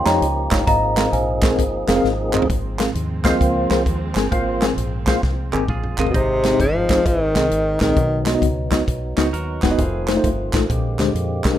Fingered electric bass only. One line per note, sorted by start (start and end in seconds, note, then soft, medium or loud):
0.06 0.19 F2 medium
0.21 0.47 C#2 medium
0.52 0.65 G1 medium
0.67 1.06 G#1 loud
1.12 1.58 A#1 loud
1.58 1.84 G1 medium
1.88 2.01 F1 medium
2.04 2.42 G#1 medium
2.50 2.88 G#1 loud
2.95 3.34 D#2 medium
3.41 3.66 C#2 medium
3.70 3.84 C2 medium
3.86 4.12 D#2 medium
4.16 4.29 G1 medium
4.32 4.71 G#1 loud
4.77 5.16 A#1 medium
5.23 5.55 C2 medium
5.53 5.66 G#1 medium
5.68 5.94 A#1 medium
5.98 6.12 G1 medium
6.14 6.53 G#1 medium
6.60 6.99 G1 medium
7.06 7.37 G#1 medium
7.35 7.49 C2 medium
7.51 7.77 G#1 medium
7.81 7.94 A#1 medium
7.96 8.35 B1 loud
8.42 8.81 C#2 medium
8.88 9.13 B1 medium
9.18 9.31 C#2 medium
9.33 9.59 D#2 medium
9.63 9.76 E1 medium
9.79 10.17 F1 loud
10.24 10.49 G1 medium
10.53 10.67 A1 medium
10.70 10.95 A#1 medium
10.99 11.12 D2 medium
11.15 11.40 F2 medium
11.45 11.58 B1 medium